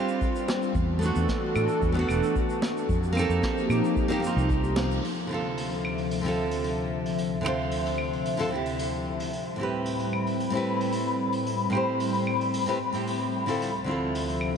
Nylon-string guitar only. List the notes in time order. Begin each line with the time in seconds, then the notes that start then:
Already playing: C4 D4 F4
0.00 G4
0.99 A3 B3
1.03 D4 F#4
1.92 A3 B3
1.97 D4 F#4
3.13 A#3 C4
3.17 D#4 A4
4.08 A#3 C4 D#4 G4
4.20 A#3 C4
4.24 D#4 F4
5.27 D3 C4 E4
5.32 F4 A4
6.21 D3 C4 E4
6.26 F4 A4
7.41 D3 C4 E4
7.46 F4 C5
8.37 D3 C4 F4 A4
8.49 D3 C4 E4
8.55 G4
9.56 A2 C4 E4
9.61 G4 B4
10.50 A2 C4 E4
10.55 G4 B4
11.70 A2 C4 E4
11.75 G4 C5
12.66 A2 C4 E4 G4 B4
12.93 A2 C4 E4 G4 C5
13.46 D3 C4 E4 F4 A4
13.84 D3 C4 E4
13.89 F4 A4